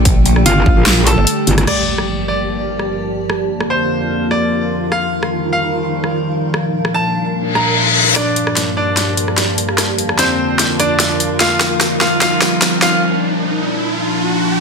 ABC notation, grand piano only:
X:1
M:4/4
L:1/8
Q:1/4=148
K:Gm
V:1 name="Grand piano"
z2 [Ff]3 [Aa]3 | d3 d4 z | z2 c3 d3 | f3 f4 z |
z2 a3 b3 | [Dd]3 [Dd]4 z | z2 [Cc]3 [Dd]3 | [Ff]3 [Ff] [Ff]3 [Ff] |
z8 |]